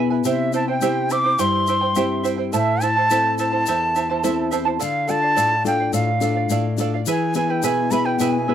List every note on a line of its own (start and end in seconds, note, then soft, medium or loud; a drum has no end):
0.00 0.21 B2 medium
0.00 0.23 B3 soft
0.00 0.10 E4 medium
0.00 0.23 E4 soft
0.00 0.23 G#4 medium
0.00 0.10 E5 medium
0.10 0.24 E4 soft
0.10 0.25 B4 soft
0.10 0.25 G#5 medium
0.24 1.35 C3 medium
0.24 0.52 E4 medium
0.24 0.53 G4 medium
0.24 0.53 C5 medium
0.24 0.52 E5 medium
0.24 0.53 E5 medium
0.24 0.53 G5 medium
0.24 shaker medium
0.53 0.68 E4 medium
0.53 0.68 C5 medium
0.53 0.67 E5 medium
0.53 0.67 G5 medium
0.53 0.68 A5 medium
0.53 shaker medium
0.68 0.81 E4 soft
0.68 0.81 C5 medium
0.68 0.82 G5 medium
0.68 1.13 G5 medium
0.81 1.37 C4 soft
0.81 1.10 E4 medium
0.81 1.37 E4 soft
0.81 1.10 G4 medium
0.81 1.37 G4 medium
0.81 1.10 C5 medium
0.81 1.09 E5 medium
0.81 1.11 G5 medium
0.81 shaker medium
1.10 1.24 E4 medium
1.10 1.24 C5 medium
1.10 1.25 E5 medium
1.10 1.23 G5 medium
1.10 1.42 D6 loud
1.10 shaker medium
1.24 1.38 E4 soft
1.24 1.38 C5 medium
1.24 1.38 G5 medium
1.38 2.49 G2 medium
1.38 1.67 E4 medium
1.38 1.67 G4 medium
1.38 1.67 C5 medium
1.38 1.67 E5 medium
1.38 1.67 G5 medium
1.38 2.25 C6 loud
1.38 shaker medium
1.67 1.82 E4 medium
1.67 1.81 C5 medium
1.67 1.82 E5 medium
1.67 1.80 G5 medium
1.67 shaker medium
1.81 1.96 E4 soft
1.81 1.96 C5 soft
1.81 1.96 G5 medium
1.96 2.51 C4 soft
1.96 2.51 E4 soft
1.96 2.23 E4 medium
1.96 2.24 G4 medium
1.96 2.52 G4 soft
1.96 2.23 C5 medium
1.96 2.22 E5 medium
1.96 2.24 G5 medium
1.96 shaker medium
2.23 2.38 E4 medium
2.23 2.37 C5 medium
2.23 2.38 E5 medium
2.23 2.37 G5 medium
2.23 shaker medium
2.38 2.52 E4 soft
2.38 2.52 C5 soft
2.38 2.52 G5 soft
2.53 3.63 A2 medium
2.53 2.81 E4 medium
2.53 2.81 A4 medium
2.53 2.81 C5 medium
2.53 2.81 E5 medium
2.53 2.84 E5 loud
2.53 2.81 A5 medium
2.53 shaker medium
2.81 2.96 E4 medium
2.81 2.96 C5 medium
2.81 2.96 E5 medium
2.81 3.38 A5 loud
2.81 2.95 A5 medium
2.81 shaker medium
2.96 3.10 E4 medium
2.96 3.10 C5 medium
2.96 3.10 A5 medium
3.10 3.65 C4 soft
3.10 3.38 E4 medium
3.10 3.66 E4 soft
3.10 3.38 A4 medium
3.10 3.66 A4 medium
3.10 3.39 C5 medium
3.10 3.38 E5 medium
3.10 3.39 A5 medium
3.10 shaker medium
3.38 3.52 E4 medium
3.38 3.51 C5 medium
3.38 3.52 E5 medium
3.38 4.48 A5 loud
3.38 3.51 A5 medium
3.38 shaker medium
3.52 3.67 E4 soft
3.52 3.66 C5 soft
3.52 3.66 A5 medium
3.66 4.77 E2 medium
3.66 3.95 E4 medium
3.66 3.95 A4 medium
3.66 3.96 C5 medium
3.66 3.95 E5 medium
3.66 3.96 A5 medium
3.66 shaker medium
3.96 4.09 E4 medium
3.96 4.09 C5 medium
3.96 4.09 E5 medium
3.96 4.08 A5 medium
3.96 shaker medium
4.10 4.23 E4 medium
4.10 4.23 C5 medium
4.10 4.23 A5 medium
4.23 4.79 C4 soft
4.23 4.51 E4 medium
4.23 4.79 E4 soft
4.23 4.52 A4 medium
4.23 4.79 A4 medium
4.23 4.51 C5 loud
4.23 4.50 E5 medium
4.23 4.52 A5 medium
4.23 shaker medium
4.51 4.66 E4 medium
4.51 4.65 C5 medium
4.51 4.65 E5 medium
4.51 4.64 A5 medium
4.51 shaker medium
4.65 4.79 E4 soft
4.65 4.80 C5 medium
4.65 4.79 A5 medium
4.79 5.36 D3 medium
4.79 5.06 A4 medium
4.79 5.07 D5 medium
4.79 5.07 F5 medium
4.79 5.11 F5 medium
4.79 shaker medium
5.07 5.54 D4 medium
5.07 5.54 F4 medium
5.07 5.22 A4 medium
5.07 5.54 A4 medium
5.07 5.22 D5 medium
5.07 5.21 F5 medium
5.07 5.66 A5 loud
5.07 shaker medium
5.22 5.35 D5 soft
5.22 5.36 F5 medium
5.36 5.92 A2 medium
5.36 5.65 A4 medium
5.36 5.65 D5 medium
5.36 5.65 F5 medium
5.36 shaker medium
5.64 6.10 D4 medium
5.64 6.10 F4 soft
5.64 6.10 A4 medium
5.64 5.79 A4 medium
5.64 5.80 D5 medium
5.64 5.79 F5 medium
5.64 5.92 G5 loud
5.64 shaker medium
5.80 5.92 D5 soft
5.80 5.93 F5 soft
5.93 6.48 A2 medium
5.93 6.20 A4 medium
5.93 6.22 D5 medium
5.93 6.22 F5 medium
5.93 6.75 F5 medium
5.93 shaker loud
6.21 6.66 D4 medium
6.21 6.66 F4 medium
6.21 6.67 A4 medium
6.21 6.36 A4 medium
6.21 6.35 D5 medium
6.21 6.34 F5 medium
6.21 shaker medium
6.36 6.50 D5 soft
6.36 6.50 F5 medium
6.49 7.04 A2 medium
6.49 6.79 A4 medium
6.49 6.79 D5 medium
6.49 6.79 F5 loud
6.49 shaker medium
6.77 7.00 D4 medium
6.77 7.00 F4 soft
6.77 7.01 A4 medium
6.77 6.93 A4 medium
6.77 6.93 D5 medium
6.77 6.93 F5 medium
6.77 shaker medium
6.94 7.08 D5 soft
6.94 7.07 F5 medium
7.06 7.61 E3 medium
7.06 7.34 E4 medium
7.06 7.35 G#4 medium
7.06 7.36 B4 medium
7.06 7.34 E5 medium
7.06 7.35 G#5 medium
7.06 shaker loud
7.34 7.80 B3 medium
7.34 7.80 E4 soft
7.34 7.49 E4 medium
7.34 7.81 G#4 medium
7.34 7.49 B4 medium
7.34 7.49 E5 medium
7.34 7.48 G#5 medium
7.34 7.52 G#5 medium
7.34 shaker medium
7.49 7.63 E4 soft
7.49 7.63 B4 medium
7.49 7.64 G5 medium
7.49 7.63 G#5 medium
7.63 8.18 B2 medium
7.63 7.92 E4 medium
7.63 7.91 G#4 medium
7.63 7.92 B4 medium
7.63 7.91 E5 medium
7.63 7.92 G#5 medium
7.63 7.93 G#5 loud
7.63 shaker loud
7.91 8.36 B3 medium
7.91 8.36 E4 soft
7.91 8.06 E4 medium
7.91 8.37 G#4 medium
7.91 8.05 B4 medium
7.91 8.06 E5 medium
7.91 8.04 G#5 medium
7.91 8.07 B5 loud
7.91 shaker medium
8.05 8.20 E4 soft
8.05 8.20 B4 medium
8.05 8.18 G5 medium
8.05 8.20 G#5 medium
8.18 8.55 B2 medium
8.18 8.47 E4 medium
8.18 8.48 G#4 medium
8.18 8.48 B4 medium
8.18 8.47 E5 medium
8.18 8.35 G5 medium
8.18 8.48 G#5 medium
8.18 shaker medium
8.35 8.55 G#5 medium
8.48 8.55 B3 medium
8.48 8.55 E4 medium
8.48 8.55 E4 soft
8.48 8.55 G#4 medium
8.48 8.55 B4 medium
8.48 8.55 E5 medium
8.48 8.55 G#5 medium